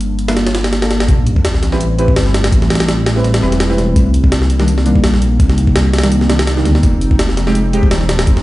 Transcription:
Already playing: G1 F3 G3 A#3 D4
0.01 closed hi-hat
0.19 closed hi-hat
0.28 A#3 D4 F4 A4, snare, closed hi-hat
0.37 snare, closed hi-hat
0.47 snare, closed hi-hat
0.55 snare, closed hi-hat
0.64 snare, closed hi-hat
0.73 snare, closed hi-hat
0.82 A#3 D4 F4 A4, snare, closed hi-hat
0.91 snare, closed hi-hat
1.00 snare, closed hi-hat
1.08 A1 G3 A3 C4 E4, kick, closed hi-hat, sub drop
1.27 closed hi-hat
1.36 kick
1.45 snare, closed hi-hat
1.54 snare
1.63 snare, closed hi-hat
1.72 C4 E4 G4 B4, snare
1.81 closed hi-hat
1.99 C4 E4 G4 B4, closed hi-hat
2.08 kick
2.16 G1, snare, open hi-hat
2.26 snare
2.34 snare, closed hi-hat
2.44 snare, closed hi-hat
2.52 A1, kick, closed hi-hat
2.62 snare
2.70 snare, closed hi-hat
2.75 snare, closed hi-hat
2.80 snare, closed hi-hat
2.88 snare, closed hi-hat
3.06 snare, closed hi-hat
3.16 C4 E4 G4 B4, snare
3.24 A1, snare, closed hi-hat
3.34 snare, closed hi-hat
3.42 E1 C4 E4 G4 B4, snare
3.52 snare, closed hi-hat
3.60 snare, closed hi-hat
3.70 E1 C4 E4 G4 B4, snare
3.78 E1, snare, closed hi-hat
3.96 C2 A#3 D#4, kick, closed hi-hat
4.14 closed hi-hat
4.24 kick
4.32 snare, closed hi-hat
4.42 snare
4.50 closed hi-hat
4.60 D#3 G3 A#3 D4, snare
4.68 closed hi-hat
4.78 snare
4.86 D#3 G3 A#3 D4, closed hi-hat
4.96 kick
5.04 A#1, snare, open hi-hat
5.14 snare
5.22 closed hi-hat
5.40 C2, kick, closed hi-hat
5.50 snare
5.58 closed hi-hat
5.67 kick
5.76 snare, closed hi-hat
5.93 snare, closed hi-hat
5.98 snare, closed hi-hat
6.03 D#3 G3 A#3 D4, snare, closed hi-hat
6.12 C2, closed hi-hat
6.21 snare
6.29 C2 D#3 G3 A#3 D4, snare, closed hi-hat
6.39 snare, closed hi-hat
6.47 snare, closed hi-hat
6.57 D#3 G3 A#3 D4, snare
6.65 D2, snare, closed hi-hat
6.75 snare
6.83 F1 F3 G#3, kick, closed hi-hat
7.01 closed hi-hat
7.11 kick
7.19 snare, closed hi-hat
7.29 snare
7.37 snare, closed hi-hat
7.47 G#3 C4 D#4 G4, snare
7.55 closed hi-hat
7.73 G#3 C4 D#4 G4, closed hi-hat
7.83 kick
7.91 D#1, snare, open hi-hat
8.01 snare
8.09 snare, closed hi-hat
8.19 snare, closed hi-hat
8.27 F1, kick, closed hi-hat
8.37 snare

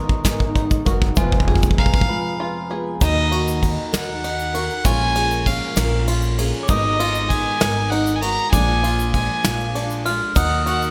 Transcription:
Already playing: G#1 D#2 G#2 G#3 B3 D#4 F4 A#4 A#5
0.09 kick
0.24 G#1 G#2 D#3 G#3 B3 D#4 A#4, kick, snare, closed hi-hat, shaker
0.40 kick
0.56 D#4, kick, closed hi-hat
0.71 kick, shaker
0.85 F#1 G#3 B3 D#4 F#4 A#4, kick, closed hi-hat, shaker
1.02 kick
1.16 F1 F2 F3 G#3 B3 F4 B4 G#5, kick, shaker
1.32 kick
1.40 kick
1.48 G#4, kick
1.55 kick
1.62 kick, shaker
1.71 kick
1.78 B1 G#3 B3 F4 B4 F5 A#5, kick
1.86 kick
1.94 kick
2.01 kick
2.09 F2 F3 G#3 B3 F4 B4 B5
2.40 F4
2.70 G#3 B3 F4 G#4 B4
3.00 D#2 D#3 F#3 A#3 D#4 F#4 A#4 D#5 A#5, kick, ride, shaker
3.32 F#4, ride
3.48 shaker
3.62 D#3 D#4 F#4 A#4, kick, ride, shaker
3.92 D#2 D#3 D#4 F#4 A#4, snare, ride, shaker
3.96 F#5
4.24 D#4, ride
4.39 shaker
4.54 D#4 F#4 A#4, ride
4.70 shaker
4.84 A#1 A#2 G#3 C#4 F4 A#4 C#5 G#5 C#6, kick, ride, shaker
5.15 G#4, ride
5.31 shaker
5.46 G#3 C#4 F4 A#4 F5, kick, ride, shaker
5.76 A#1 A#2 G#3 C#4 F4 A#4, snare, ride, shaker
6.07 F4, ride
6.22 shaker
6.38 C#4 F4 G#4 A#4, ride
6.53 shaker
6.62 C#5 D6
6.67 G#1 G#2 D#3 G#3 B3 D#4 A#4 D#5 D#6, kick, ride, shaker
7.00 F4, ride
7.15 shaker
7.29 G#3 B3 D#4 A#4 G#5, kick, ride, shaker
7.60 G#1 G#2 D#3 G#3 B3 D#4 A#4, snare, ride, shaker
7.90 D#4 F#5, ride
8.07 shaker
8.15 G#5
8.21 G#3 B3 D#4 F#4 A#4 A#5, ride
8.38 shaker
8.51 A#1 A#2 F3 G#3 A#3 D4 F4 G#4 D5 G#5 D6, kick, ride, shaker
8.83 F4, ride
8.99 shaker
9.13 F3 G#3 D4 F4 G#5, kick, ride
9.44 A#1 A#2 F3 G#3 D4 F4, snare, ride, shaker
9.60 shaker
9.75 D4, ride
9.90 shaker
10.05 G#3 D4 F4 F6, ride
10.35 D#2 D#3 F#3 A#3 D#4 F#4 A#4 D#5 F#5 D#6, kick, ride, shaker
10.66 F#4 F#5, ride
10.82 shaker

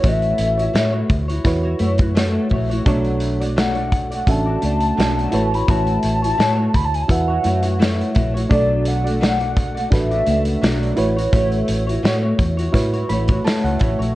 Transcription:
Already playing: E4 F#4 B4 C#5
0.03 A1 A3 E4 F#4 C#5, kick, closed hi-hat
0.07 E5
0.22 closed hi-hat
0.38 A1, closed hi-hat
0.57 E4 F#4 C#5, closed hi-hat
0.73 A2 A3 E4 F#4 C#5, snare, closed hi-hat
0.92 E4 F#4 C#5
1.10 D2, kick, closed hi-hat
1.28 E4 F#4 C#5, closed hi-hat
1.44 E2 E4 F#4 B4 C#5, kick, snare, closed hi-hat
1.63 E4 F#4 C#5
1.79 F#2 A3 E4 F#4 C#5, closed hi-hat
1.98 F#4 C#5, kick, closed hi-hat
2.02 E4
2.15 A3 E4 F#4 C#5, snare, closed hi-hat
2.49 A#1 A3 E4 F#4, kick, open hi-hat
2.54 C#5
2.70 E4 F#4 C#5, closed hi-hat
2.86 B1 B2 F#3 A3 D4 F#4 A4 C#5 D5, kick, closed hi-hat
3.05 closed hi-hat
3.20 closed hi-hat
3.40 A3 D4 F#4 D5, closed hi-hat
3.56 B2 F#3 A3 D4 F#4 D5 F#5, snare, closed hi-hat
3.75 A3 D4 F#4 D5, closed hi-hat
3.92 kick, closed hi-hat
4.11 A3 D4 F#4 D5 F#5, closed hi-hat
4.27 A1 C#4 F#4 A4 E5, kick, closed hi-hat
4.31 D4 A5
4.46 A3 D4 F#4 D5
4.61 C#2 A3 D4 F#4 D5, closed hi-hat
4.81 closed hi-hat
4.97 B1 B2 F#3 A3 D4 F#4 D5 A5, snare, closed hi-hat
5.19 closed hi-hat
5.32 A1 A3 E4 F#4 B4 C#5, closed hi-hat
5.36 C#5
5.51 E4 F#4 C#5 B5, closed hi-hat
5.68 A1 A3 E4 F#4 C#5 A5, kick, closed hi-hat
5.87 closed hi-hat
6.03 A1, closed hi-hat
6.22 E4 F#4 C#5, closed hi-hat
6.38 A2 A3 E4 F#4 C#5, snare, closed hi-hat
6.57 E4 F#4 C#5
6.74 D2 B5, kick, closed hi-hat
6.85 A5
6.94 G#5, closed hi-hat
7.02 A5
7.08 E2 E4 F#4 B4 E5 F#5, kick, closed hi-hat
7.28 E4 F#4 C#5
7.43 F#2 A3 E4 F#4 C#5, closed hi-hat
7.63 E4 F#4 C#5, closed hi-hat
7.79 A3 E4 F#4 C#5, snare, closed hi-hat
8.01 closed hi-hat
8.14 A#1 A3 E4 F#4 C#5, kick, closed hi-hat
8.34 E4 F#4 C#5, closed hi-hat
8.49 B1 B2 F#3 A3 D4 F#4 A4 D5, kick, closed hi-hat
8.85 F#5, closed hi-hat
9.04 A3 D4 F#4 D5, closed hi-hat
9.20 B2 F#3 A3 D4 F#4 D5, snare, closed hi-hat
9.39 A3 D4 F#4 D5, closed hi-hat
9.57 kick, closed hi-hat
9.75 A3 D4 F#4 D5, closed hi-hat
9.90 A1 D4 F#4 A4 B4 E5, kick, snare, closed hi-hat
10.10 A3 D4 F#4 D5, closed hi-hat
10.26 C#2 A3 D4 F#4 D5, closed hi-hat
10.45 closed hi-hat
10.57 E5
10.62 B1 B2 F#3 A3 D4 F#4 D5, snare, closed hi-hat
10.83 closed hi-hat
10.96 A1 A3 E4 F#4 B4 C#5, closed hi-hat
11.00 C#5
11.17 E4 F#4 C#5, closed hi-hat
11.33 A1 A3 E4 F#4 C#5, kick, closed hi-hat
11.52 closed hi-hat
11.68 A1, closed hi-hat
11.87 E4 F#4 C#5, closed hi-hat
12.03 A2 A3 E4 F#4 C#5, snare, closed hi-hat
12.23 E4 F#4 C#5
12.39 E2, kick, closed hi-hat
12.57 E4 F#4 C#5, closed hi-hat
12.73 A2 E4 F#4 B4 C#5, kick, snare, closed hi-hat
12.93 E4 F#4 C#5, closed hi-hat
13.09 A1 A3 E4 F#4 C#5 B5, closed hi-hat
13.28 F#4 C#5, kick, closed hi-hat
13.32 E4
13.44 A3 E4 F#4 C#5 A5, snare, closed hi-hat
13.64 C#2 F#5, closed hi-hat
13.79 A1 A3 E4 F#4 C#5 E5, kick, closed hi-hat
13.99 A#1 E4 F#4 C#5, closed hi-hat

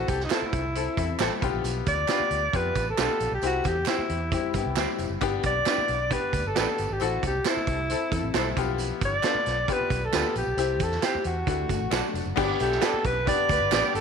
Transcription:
Already playing: C4 E4 F#4 A4
0.08 C2 G4, kick, closed hi-hat, tambourine
0.20 D#4, snare
0.30 C4 E4 A4 C5, snare, clap, closed hi-hat, tambourine
0.42 muted fingered electric bass stroke
0.52 C2, kick, closed hi-hat, tambourine
0.75 C4 E4 A4, closed hi-hat
0.97 E2 C4 A4 E5, kick, closed hi-hat, tambourine
1.19 A1 G3 C4 E4 A4 C5 G5, snare, clap, closed hi-hat, tambourine
1.41 B1 F3 B3 D4 F4 G4, kick, closed hi-hat, tambourine
1.54 A#1
1.64 B1, closed hi-hat, tambourine
1.86 D2 D5, kick, closed hi-hat, tambourine
2.08 B3 D4 F4 G4 B4, snare, clap, closed hi-hat, tambourine
2.20 muted fingered electric bass stroke
2.30 D2, closed hi-hat, tambourine
2.53 F2 B3 F4 G4 B4, kick, closed hi-hat
2.75 A1, kick, closed hi-hat, tambourine
2.90 A4
2.98 B1 B3 D4 F4 G4 A4 B4, snare, clap, closed hi-hat, tambourine
3.20 A#1, closed hi-hat, tambourine
3.32 B1 G4
3.42 C2 C4 E4 G4, closed hi-hat, tambourine
3.46 F#4
3.64 E2, kick, closed hi-hat, tambourine
3.68 G4
3.86 C4 E4 G4 C5, snare, clap, closed hi-hat, tambourine
3.98 muted fingered electric bass stroke
4.09 E2, closed hi-hat
4.32 G3 C4 E4 G4, kick, closed hi-hat, tambourine
4.54 G2 B3 G4, kick, closed hi-hat, tambourine
4.66 C2
4.76 D2 G3 C4 E4 G4 C5, snare, clap, closed hi-hat, tambourine
4.99 F1, closed hi-hat, tambourine
5.10 F#1
5.21 G1 B3 D4 G4, kick, closed hi-hat, tambourine
5.43 B1 D5, kick, closed hi-hat, tambourine
5.66 B3 D4 E4 G4 B4, snare, clap, closed hi-hat, tambourine
5.78 muted fingered electric bass stroke
5.88 B1, closed hi-hat, tambourine
6.10 B3 D4 G4 B4, kick, closed hi-hat, tambourine
6.33 D2, kick, closed hi-hat, tambourine
6.45 G1 A4
6.55 A1 B3 D4 G4 A4 B4, snare, clap, closed hi-hat, tambourine
6.78 G1, closed hi-hat, tambourine
6.90 G#1 G4
7.00 A1 C4 E4 F#4 A4, closed hi-hat, tambourine
7.23 C2, kick, closed hi-hat, tambourine
7.27 G4
7.45 C4 E4 A4 C5, snare, clap, closed hi-hat, tambourine
7.49 E4
7.57 muted fingered electric bass stroke
7.67 C2, kick, closed hi-hat
7.90 C4 E4 A4, closed hi-hat, tambourine
8.12 E2 C4 A4, kick, closed hi-hat, tambourine
8.23 A1
8.34 B1 G3 C4 E4 A4 C5, snare, clap, closed hi-hat, tambourine
8.56 B1 F3 B3 D4 F4 G4, kick, closed hi-hat, tambourine
8.78 closed hi-hat, tambourine
9.01 G1, kick, closed hi-hat, tambourine
9.05 D5
9.23 B3 D4 F4 A4 B4, snare, clap, closed hi-hat, tambourine
9.35 muted fingered electric bass stroke
9.46 B1, snare, closed hi-hat, tambourine
9.68 B3 F4 G4, kick, closed hi-hat, tambourine
9.73 B4
9.81 muted fingered electric bass stroke
9.90 B1, kick, closed hi-hat, tambourine
10.05 A4
10.12 D2 B3 D4 F4 G4 B4, snare, clap, closed hi-hat, tambourine
10.35 A#1 G4, closed hi-hat, tambourine
10.47 B1
10.57 C2 C4 E4 G4, closed hi-hat, tambourine
10.80 E2 A4, kick, closed hi-hat, tambourine
10.91 snare
11.02 C4 E4 G4 C5, snare, clap, closed hi-hat, tambourine
11.15 muted fingered electric bass stroke
11.24 E2 F#4, closed hi-hat, tambourine
11.47 D2 A3 D4 E4 F#4, kick, closed hi-hat, tambourine
11.69 G1 A3 F#4, kick, closed hi-hat, tambourine
11.80 A1
11.90 B1 F#3 A3 D4 F#4 A4 D5, snare, clap, closed hi-hat, tambourine
12.14 F1, closed hi-hat, tambourine
12.26 F#1
12.36 G1 B3 D4 G4 D5, kick, crash, tambourine
12.60 B1 A3 G4 A4, closed hi-hat, tambourine
12.72 snare
12.80 B3 D4 G4 A4 B4 D5, snare, clap, closed hi-hat, tambourine
12.93 muted fingered electric bass stroke
13.05 B1 B4, kick, closed hi-hat, tambourine
13.26 B3 D4 G4 B4 D5, kick, closed hi-hat, tambourine
13.49 D2 B3 B4, kick, closed hi-hat, tambourine
13.60 G1
13.71 A1 G3 B3 D4 G4 B4 D5, snare, clap, closed hi-hat, tambourine
13.94 G1 A4, closed hi-hat, tambourine

